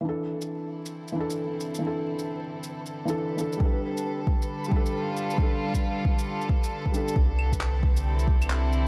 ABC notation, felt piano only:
X:1
M:4/4
L:1/16
Q:"Swing 16ths" 1/4=135
K:C
V:1 name="Felt piano"
[E,DA]8- [E,DA]2 [E,DA]6 | [E,DA]8- [E,DA]3 [E,DA]3 [E,DA]2 | [G,DA]8- [G,DA]2 [G,DA]6 | [G,DA]8- [G,DA]3 z3 [G,DA]2 |
z16 |]